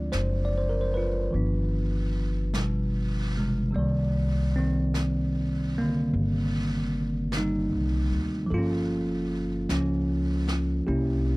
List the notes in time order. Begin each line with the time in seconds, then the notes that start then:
Already playing: F3 G#3 C4 D4 F4 D5
0.12 F#1 C5, brush sweep, snare, hi-hat pedal
0.45 D5
0.58 C5
0.69 A#4
0.81 C5
0.94 F4 B4
1.31 G1 D#3 F3 B3, brush sweep
1.36 D4
2.54 B2 G3, brush sweep, snare, hi-hat pedal
3.37 C3 G#3
3.70 C3 G3 A#3, brush sweep
3.74 C2 D5
3.79 D#3
4.56 D#3 C4
4.94 brush sweep, snare, hi-hat pedal
5.78 D3 A#3
6.13 G1, brush sweep
7.32 brush sweep, snare, hi-hat pedal
7.37 G3 D#4
7.73 C2
8.11 D2
8.46 F3, brush sweep
8.50 G1 A#3 F4 A4
8.58 C#4
9.69 C#2 F3 C#4, brush sweep, snare, hi-hat pedal
10.48 snare
10.87 C2 A#3 C#4 E4 G4, brush sweep